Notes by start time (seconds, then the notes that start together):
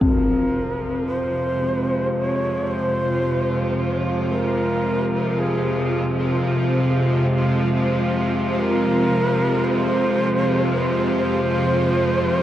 0.00 F2 C3 F3 C4 A#4, impact
1.07 C5
1.51 G#3
2.16 C#5
2.67 C5 C#5
3.07 F4
4.30 A#4
5.39 G#4
8.52 C5
8.60 A#4
9.65 C5
10.73 B4
10.89 C5